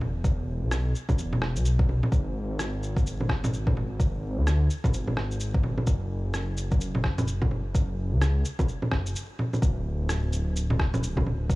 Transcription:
0.00 0.63 E1 loud
0.00 low bongo soft
0.24 kick loud
0.24 shaker medium
0.61 0.93 B1 medium
0.71 cross-stick loud
0.71 shaker medium
0.95 shaker medium
1.09 kick loud
1.09 low bongo medium
1.09 shaker soft
1.18 1.57 E1 medium
1.18 shaker medium
1.33 low bongo soft
1.42 cross-stick loud
1.56 2.01 B1 loud
1.56 shaker medium
1.65 shaker medium
1.79 kick loud
1.89 low bongo soft
2.03 low bongo soft
2.12 4.39 G#1 loud
2.12 kick loud
2.12 shaker medium
2.59 cross-stick loud
2.59 shaker medium
2.83 shaker soft
2.97 kick loud
2.97 shaker soft
3.06 shaker soft
3.20 low bongo soft
3.29 kick medium
3.29 cross-stick loud
3.44 low bongo medium
3.44 shaker medium
3.53 shaker medium
3.67 kick loud
3.67 low bongo medium
3.77 low bongo soft
4.00 kick loud
4.00 shaker medium
4.37 4.69 D2 medium
4.47 cross-stick loud
4.47 shaker medium
4.70 shaker soft
4.84 kick loud
4.84 low bongo medium
4.84 shaker soft
4.93 5.15 G#1 medium
4.93 shaker medium
5.07 low bongo soft
5.16 5.86 G#1 medium
5.16 cross-stick loud
5.31 shaker medium
5.40 shaker medium
5.54 kick loud
5.63 low bongo soft
5.78 low bongo soft
5.87 8.13 F#1 loud
5.87 kick loud
5.87 shaker medium
6.34 cross-stick loud
6.34 shaker medium
6.57 shaker medium
6.71 kick loud
6.71 shaker soft
6.81 shaker medium
6.95 low bongo medium
7.04 kick medium
7.04 cross-stick loud
7.18 low bongo medium
7.18 shaker medium
7.28 shaker medium
7.42 kick loud
7.42 low bongo medium
7.51 low bongo soft
7.75 kick loud
7.75 shaker medium
8.12 8.44 C#2 medium
8.22 cross-stick loud
8.22 shaker medium
8.45 shaker medium
8.59 kick loud
8.59 low bongo medium
8.59 shaker soft
8.68 shaker medium
8.82 low bongo soft
8.92 9.15 F#1 medium
8.92 kick medium
8.92 cross-stick loud
9.06 shaker medium
9.16 shaker medium
9.39 low bongo soft
9.53 low bongo medium
9.53 shaker soft
9.62 11.55 D1 loud
9.62 kick loud
9.62 shaker medium
10.09 cross-stick loud
10.09 shaker medium
10.33 shaker medium
10.56 shaker medium
10.70 low bongo medium
10.79 kick loud
10.79 cross-stick loud
10.94 low bongo medium
10.94 shaker medium
11.03 shaker medium
11.17 kick medium
11.17 low bongo medium
11.26 low bongo soft
11.50 kick loud
11.50 shaker medium

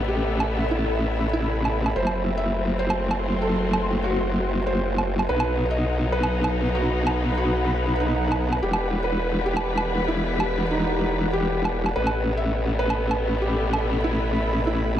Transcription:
0.00 1.94 A1 medium
0.00 1.92 C3 medium
0.00 1.92 A3 medium
0.00 1.92 B3 medium
0.00 3.29 A4 medium
0.00 3.29 E5 medium
0.00 2.76 B5 medium
0.08 0.63 G4 medium
0.40 low woodblock medium
0.71 1.26 E4 medium
1.33 1.88 E4 medium
1.65 low woodblock medium
1.86 low woodblock medium
1.96 5.27 F#1 medium
1.96 5.26 F#3 medium
1.96 5.26 A3 medium
1.96 5.26 C4 medium
1.96 6.63 F#4 medium
1.96 2.32 C5 medium
2.07 5.29 C6 medium
2.07 low woodblock medium
2.37 2.74 E5 medium
2.79 3.34 C5 medium
2.90 low woodblock medium
3.06 12.85 F#5 medium
3.11 low woodblock medium
3.42 3.96 A4 medium
3.73 low woodblock medium
4.04 4.59 F#4 medium
4.67 5.21 C5 medium
4.98 low woodblock medium
5.19 low woodblock medium
5.29 8.60 B1 medium
5.29 8.59 F#3 medium
5.29 8.59 B3 medium
5.29 8.59 D#4 medium
5.29 13.30 B4 medium
5.29 5.65 B4 loud
5.40 low woodblock medium
5.71 6.07 D#5 medium
5.92 9.52 B5 medium
6.12 6.67 B4 medium
6.23 low woodblock medium
6.44 low woodblock medium
6.75 7.30 F#4 medium
7.07 low woodblock medium
7.37 7.92 F#4 medium
8.00 8.55 D#4 medium
8.32 low woodblock medium
8.53 low woodblock medium
8.62 11.94 E1 medium
8.62 11.92 E3 medium
8.62 11.92 B3 medium
8.62 13.13 G4 medium
8.62 11.92 G4 medium
8.62 8.99 G4 medium
8.62 11.92 B4 medium
8.73 low woodblock medium
9.04 9.40 B4 medium
9.46 10.00 G4 medium
9.57 low woodblock medium
9.78 low woodblock medium
10.08 10.63 E4 medium
10.40 low woodblock medium
10.71 11.25 D#4 medium
11.33 11.88 G4 medium
11.65 low woodblock medium
11.86 low woodblock medium
11.96 15.00 A1 medium
11.96 15.00 B2 medium
11.96 15.00 A3 medium
11.96 15.00 B3 medium
11.96 15.00 A4 medium
11.96 12.32 B4 medium
12.07 low woodblock medium
12.22 15.00 B5 medium
12.37 12.73 E5 medium
12.79 13.34 B4 medium
12.79 15.00 E5 medium
12.90 low woodblock medium
13.11 low woodblock medium
13.42 13.96 G4 medium
13.73 low woodblock medium
14.04 14.59 E4 medium
14.67 15.00 E4 medium

